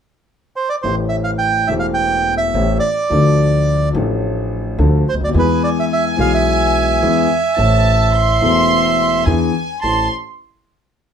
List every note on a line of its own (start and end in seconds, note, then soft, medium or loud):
0.56 0.69 C5 medium
0.69 0.76 D5 medium
0.82 1.65 A1 medium
0.82 1.65 A2 medium
0.82 1.64 E3 soft
0.82 1.65 A3 soft
0.82 1.65 C4 soft
0.82 0.95 C5 medium
0.87 1.66 G4 medium
1.09 1.16 E5 medium
1.24 1.31 F5 medium
1.38 1.69 G5 medium
1.67 2.49 E1 medium
1.67 2.50 E1 medium
1.67 2.50 E2 medium
1.67 2.49 E3 medium
1.67 2.50 A3 soft
1.67 2.50 C4 soft
1.67 1.74 E5 medium
1.72 2.51 G4 medium
1.79 1.86 F5 medium
1.94 2.35 G5 medium
2.37 2.78 E5 medium
2.54 2.77 A1 medium
2.54 2.78 A1 medium
2.54 2.78 A2 medium
2.54 2.77 E3 medium
2.54 2.78 A3 soft
2.54 2.78 C4 soft
2.54 2.78 G4 medium
2.80 3.89 D5 medium
3.10 3.90 D2 medium
3.10 3.91 D2 medium
3.10 3.91 D3 medium
3.10 3.90 F3 soft
3.10 3.90 A3 soft
3.10 3.91 D4 soft
3.10 3.92 A4 medium
3.93 4.74 A1 medium
3.93 4.75 A1 medium
3.93 4.75 A2 medium
3.93 4.74 F3 medium
3.93 4.75 A3 medium
3.93 4.75 D4 medium
3.93 4.76 A4 medium
4.78 5.02 D2 medium
4.78 5.02 D3 medium
4.78 5.02 F3 medium
4.78 5.02 A3 medium
4.78 5.02 D4 medium
4.78 5.02 A4 medium
5.09 5.15 C5 medium
5.13 5.20 C#2 soft
5.13 5.21 C#2 soft
5.21 5.26 D2 soft
5.21 5.28 D2 soft
5.21 5.30 D5 medium
5.26 5.34 D#2 soft
5.26 5.35 D#2 medium
5.34 6.14 E2 medium
5.34 6.14 E3 medium
5.34 6.14 G#3 medium
5.34 6.15 B3 soft
5.34 6.15 G#4 medium
5.34 7.54 G#5 medium
5.39 5.63 B4 medium
5.64 5.70 D5 medium
5.80 5.85 E5 medium
5.93 6.05 E5 medium
6.17 6.98 B1 medium
6.17 6.98 B2 medium
6.17 6.97 E3 medium
6.17 6.98 G#3 medium
6.17 6.99 B3 medium
6.17 6.99 G#4 medium
6.17 6.32 F5 medium
6.34 9.24 E5 medium
7.02 7.26 E2 medium
7.02 7.26 E3 medium
7.02 7.26 G#3 medium
7.02 7.26 B3 medium
7.02 7.26 G#4 medium
7.56 8.38 A1 medium
7.56 8.38 A2 medium
7.56 8.37 E3 medium
7.56 8.38 A3 soft
7.56 8.38 C4 soft
7.56 8.39 A4 medium
7.56 8.13 A5 medium
8.12 9.25 C6 medium
8.41 9.22 E1 medium
8.41 9.22 E2 medium
8.41 9.22 E3 medium
8.41 9.22 A3 medium
8.41 9.23 C4 medium
8.41 9.23 A4 medium
9.25 9.50 E2 medium
9.25 9.51 E2 medium
9.25 9.51 E3 medium
9.25 9.51 B3 soft
9.25 9.51 D4 soft
9.25 9.51 G#4 medium
9.25 9.82 G#5 medium
9.82 10.06 A1 soft
9.82 10.07 A1 soft
9.82 10.07 C4 soft
9.82 10.07 E4 soft
9.82 10.07 A4 soft
9.82 10.08 A5 medium
9.82 10.08 C6 medium